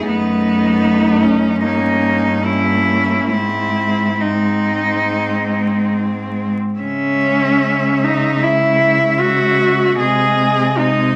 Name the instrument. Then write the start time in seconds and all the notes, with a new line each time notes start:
cello
0.07 F#2 A3 B3 D#4
1.23 C#4
1.63 G2 A#3 C#4 D#4
2.44 A#3 C#4 E4
3.31 G#2 G#3 C4 E4
4.20 G#3 C4 D#4
6.79 C#3 G#3 C#4 E5
8.04 D#4
8.41 G#3 E4 E5
9.20 F#4
9.98 C3 G#3 G#4 D#5
10.78 G#3 D#4 D#5